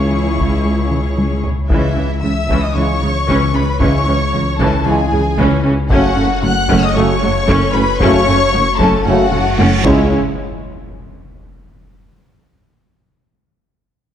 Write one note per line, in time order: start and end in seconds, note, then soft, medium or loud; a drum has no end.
0.00 1.50 C#2 medium
0.00 1.50 C#2 soft
0.00 1.50 C#2 medium
0.00 1.70 C#2 medium
0.00 1.40 C#3 medium
0.00 1.39 G#3 medium
0.00 1.40 C#4 medium
0.00 1.46 C#4 medium
0.00 1.39 E4 medium
0.00 1.50 E4 soft
0.00 1.46 G#4 soft
0.00 1.46 C#5 medium
0.00 1.40 C#6 medium
0.12 0.28 E3 medium
0.39 0.54 C#3 medium
0.39 taiko medium
0.66 0.81 G#3 medium
0.92 taiko mid medium
1.18 1.34 C#3 medium
1.18 taiko high medium
1.44 taiko low medium
1.69 1.80 C#2 medium
1.69 1.78 C#2 medium
1.69 5.92 C#2 medium
1.69 1.88 C#3 medium
1.69 1.78 C#3 medium
1.69 1.86 C#3 medium
1.69 1.95 E3 medium
1.69 1.89 G#3 medium
1.69 1.88 C#4 medium
1.69 1.95 C#4 medium
1.69 2.18 E4 medium
1.69 1.88 E4 medium
1.69 2.19 E5 medium
1.69 taiko medium
1.95 2.06 C#2 soft
1.95 2.04 C#2 soft
1.95 2.04 C#3 soft
1.95 2.06 E3 soft
1.95 2.12 G#3 medium
1.95 2.06 C#4 soft
2.22 2.32 C#2 soft
2.22 2.31 C#2 soft
2.22 2.31 C#3 soft
2.22 2.39 E3 medium
2.22 2.32 G#3 soft
2.22 2.62 E5 medium
2.22 2.62 E6 medium
2.48 2.59 C#2 medium
2.48 2.58 C#2 medium
2.48 2.65 C#3 medium
2.48 2.57 C#3 medium
2.48 2.74 E3 medium
2.48 2.74 C#4 medium
2.48 taiko medium
2.62 2.75 D#5 medium
2.62 2.75 D#6 medium
2.75 2.85 C#2 soft
2.75 2.84 C#2 soft
2.75 2.83 C#3 soft
2.75 2.94 C#3 medium
2.75 2.84 E3 soft
2.75 2.92 E3 medium
2.75 2.94 G#3 soft
2.75 2.94 C#4 medium
2.75 2.83 C#4 soft
2.75 2.94 E4 medium
2.75 3.52 C#5 medium
2.75 3.54 C#6 medium
3.01 3.12 C#2 soft
3.01 3.10 C#2 soft
3.01 3.09 C#3 soft
3.01 3.10 C#3 soft
3.01 3.17 E3 medium
3.01 3.10 G#3 medium
3.28 3.38 C#2 medium
3.28 3.36 C#2 medium
3.28 3.36 C#3 medium
3.28 3.44 C#3 medium
3.28 3.53 E3 medium
3.28 3.53 C#4 medium
3.28 taiko medium
3.54 3.65 C#2 soft
3.54 3.63 C#2 soft
3.54 3.62 C#3 soft
3.54 3.62 E3 medium
3.54 3.62 C#4 medium
3.54 3.70 C#4 medium
3.54 3.80 B4 medium
3.54 3.80 B5 medium
3.79 3.91 C#2 medium
3.79 3.89 C#2 medium
3.79 3.87 C#3 medium
3.79 3.96 C#3 medium
3.79 3.99 C#3 medium
3.79 4.05 E3 medium
3.79 3.99 G#3 medium
3.79 4.05 C#4 medium
3.79 3.99 C#4 medium
3.79 3.99 E4 medium
3.79 4.59 C#5 medium
3.79 4.58 C#6 medium
3.79 taiko medium
4.06 4.17 C#2 soft
4.06 4.16 C#2 soft
4.06 4.14 C#3 medium
4.06 4.15 E3 soft
4.06 4.22 G#3 medium
4.06 4.16 C#4 soft
4.32 4.43 C#2 medium
4.32 4.42 C#2 medium
4.32 4.40 C#3 medium
4.32 4.42 C#3 soft
4.32 4.49 E3 medium
4.32 4.42 G#3 medium
4.59 4.69 C#2 medium
4.59 4.68 C#2 medium
4.59 4.75 C#3 medium
4.59 4.67 C#3 medium
4.59 4.84 E3 medium
4.59 4.84 C#4 medium
4.59 4.85 A4 medium
4.59 4.85 A5 medium
4.59 taiko medium
4.85 4.96 C#2 medium
4.85 4.94 C#2 medium
4.85 5.03 C#3 medium
4.85 4.93 C#3 medium
4.85 4.94 E3 medium
4.85 5.02 E3 medium
4.85 5.04 G#3 medium
4.85 4.94 C#4 medium
4.85 5.05 C#4 medium
4.85 5.04 E4 medium
4.85 5.65 G#4 medium
4.85 5.65 G#5 medium
5.11 5.20 C#2 medium
5.11 5.23 C#2 medium
5.11 5.19 C#3 medium
5.11 5.20 C#3 medium
5.11 5.27 E3 medium
5.11 5.19 G#3 medium
5.38 5.46 C#2 medium
5.38 5.49 C#2 medium
5.38 5.54 C#3 medium
5.38 5.46 C#3 medium
5.38 5.63 E3 medium
5.38 5.63 C#4 medium
5.38 taiko medium
5.64 5.75 C#2 medium
5.64 5.73 C#2 medium
5.64 5.73 C#3 medium
5.64 5.73 E3 medium
5.64 5.80 C#4 medium
5.64 5.73 C#4 medium
5.90 9.84 F#1 medium
5.90 6.01 F#1 medium
5.90 5.99 F#1 medium
5.90 5.98 F#2 medium
5.90 6.09 C#3 medium
5.90 6.06 F#3 medium
5.90 6.09 A3 medium
5.90 6.16 A3 medium
5.90 6.10 C#4 medium
5.90 6.16 C#4 medium
5.90 6.40 F#4 medium
5.90 6.10 F#4 medium
5.90 6.39 F#5 medium
5.90 taiko loud
6.16 6.28 F#1 medium
6.16 6.25 F#1 medium
6.16 6.25 F#2 medium
6.16 6.26 A3 medium
6.16 6.32 C#4 medium
6.16 6.26 C#4 medium
6.42 6.54 F#1 medium
6.42 6.52 F#1 medium
6.42 6.51 F#2 medium
6.42 6.52 F#3 medium
6.42 6.59 A3 medium
6.42 6.52 A3 medium
6.42 6.82 F#5 medium
6.42 6.83 F#6 loud
6.69 6.80 F#1 medium
6.69 6.78 F#1 medium
6.69 6.77 F#2 medium
6.69 6.85 F#3 medium
6.69 6.94 A3 medium
6.69 6.94 C#4 medium
6.69 taiko medium
6.82 6.96 D#5 medium
6.82 6.96 D#6 loud
6.94 7.06 F#1 medium
6.94 7.05 F#1 medium
6.94 7.04 F#2 medium
6.94 7.14 C#3 medium
6.94 7.12 A3 medium
6.94 7.04 A3 medium
6.94 7.14 A3 medium
6.94 7.04 C#4 medium
6.94 7.15 C#4 medium
6.94 7.15 F#4 medium
6.94 7.75 C#5 medium
6.94 7.74 C#6 loud
7.21 7.32 F#1 medium
7.21 7.30 F#1 medium
7.21 7.29 F#2 medium
7.21 7.31 F#3 medium
7.21 7.38 A3 medium
7.21 7.31 A3 medium
7.48 7.59 F#1 loud
7.48 7.57 F#1 loud
7.48 7.56 F#2 loud
7.48 7.64 F#3 loud
7.48 7.73 A3 medium
7.48 7.73 C#4 medium
7.48 taiko medium
7.73 7.85 F#1 medium
7.73 7.83 F#1 medium
7.73 7.82 F#2 medium
7.73 7.83 A3 medium
7.73 7.83 C#4 medium
7.73 7.90 F#4 medium
7.73 8.01 B4 medium
7.73 8.00 B5 loud
7.98 8.11 F#1 loud
7.98 8.09 F#1 loud
7.98 8.09 F#2 loud
7.98 8.20 C#3 medium
7.98 8.17 F#3 loud
7.98 8.26 A3 medium
7.98 8.20 A3 medium
7.98 8.26 C#4 medium
7.98 8.20 C#4 medium
7.98 8.20 F#4 medium
7.98 8.78 C#5 loud
7.98 8.77 C#6 loud
7.98 taiko loud
7.98 reverse cymbal medium
8.26 8.37 F#1 medium
8.26 8.35 F#1 medium
8.26 8.35 F#2 medium
8.26 8.35 A3 medium
8.26 8.43 C#4 medium
8.26 8.36 C#4 medium
8.53 8.64 F#1 medium
8.53 8.61 F#1 medium
8.53 8.61 F#2 medium
8.53 8.61 F#3 medium
8.53 8.69 A3 medium
8.53 8.61 A3 medium
8.78 8.90 F#1 medium
8.78 8.88 F#1 loud
8.78 8.88 F#2 medium
8.78 8.95 F#3 loud
8.78 9.05 A3 medium
8.78 9.04 C#4 medium
8.78 9.06 A4 medium
8.78 9.05 A5 loud
8.78 taiko medium
9.05 9.16 F#1 medium
9.05 9.14 F#1 medium
9.05 9.14 F#2 medium
9.05 9.25 C#3 medium
9.05 9.21 A3 medium
9.05 9.14 A3 medium
9.05 9.25 A3 medium
9.05 9.15 C#4 medium
9.05 9.25 C#4 medium
9.05 9.85 F#4 medium
9.05 9.25 F#4 medium
9.05 9.83 F#5 medium
9.32 9.42 F#1 medium
9.32 9.41 F#1 medium
9.32 9.40 F#2 medium
9.32 9.42 F#3 medium
9.32 9.48 A3 medium
9.32 9.42 A3 medium
9.32 taiko low-mid medium
9.57 9.68 F#1 medium
9.57 9.67 F#1 medium
9.57 9.66 F#2 medium
9.57 9.75 F#3 loud
9.57 9.84 A3 medium
9.57 9.84 C#4 medium
9.57 taiko high medium
9.83 10.07 C#2 medium
9.83 10.15 C#2 medium
9.83 10.15 C#2 loud
9.83 10.15 C#2 medium
9.83 10.07 C#3 medium
9.83 10.08 G#3 medium
9.83 10.16 G#3 medium
9.83 10.14 C#4 medium
9.83 10.07 C#4 medium
9.83 10.07 E4 medium
9.83 10.16 E4 medium
9.83 10.14 C#5 medium
9.83 taiko medium
9.83 impact medium